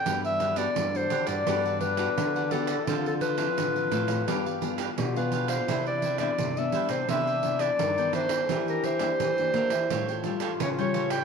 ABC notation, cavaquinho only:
X:1
M:4/4
L:1/16
Q:1/4=85
K:Gmix
V:1 name="Cavaquinho"
[DGB^f]2 [DGBf] [DGBf] z2 [DGBf] [GBf] [DGBf] [GBf] [DGBf] [DGBf] z [GBf] [DGBf] [GBf] | [DAcf]2 [DAcf] [DAcf] z2 [DAcf] [Acf] [DGBf] [GBf] [DGBf] [DGBf] z [GBf] [DGBf] [GBf] | [EBcg]2 [EBcg] [EBcg] z2 [EBcg] [Bcg] [EBcg] [Bcg] [EBcg] [EBcg] z [Bcg] [EBcg] [Bcg] | [D_Beg]2 [DBeg] [DBeg] z2 [DBeg] [Beg] [^EA^cg] [Acg] [EAcg] [EAcg] z [Acg] [EAcg] [Acg] |]